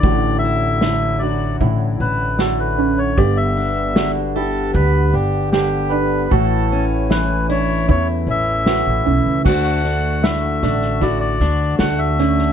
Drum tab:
CC |----------------|----------------|----------------|x---------------|
SD |----o-------o---|----o-------o---|----o-------o---|o-o-o-ooo-o-o-oo|
BD |o-------o-------|o-------o-------|o-------o-------|o-------o-------|